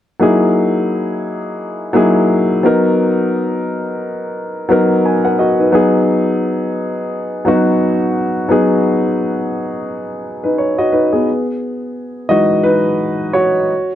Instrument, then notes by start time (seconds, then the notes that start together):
grand piano
0.20 F#3 A#3 D#4 E4 G#4
1.93 F#3 A#3 D#4 E4 G#4
2.63 F#3 B3 D#4 A#4
4.69 F#3 B3 D#4 A#4
5.06 B4 G#5
5.25 A#4 F#5
5.39 F#4 D#5
5.59 D#4 B4
5.72 F#3 B3 D#4 G#4
7.45 F#3 B3 D#4 F#4
8.49 F#3 B3 D#4 G#4
10.44 D#4 B4
10.58 C#5
10.78 F#4 D#5
10.92 D#4 B4
11.13 B3 G#4
12.29 E3 G#3 D#4 F#4 D#5
12.63 D#4 B4
13.33 F#4 C#5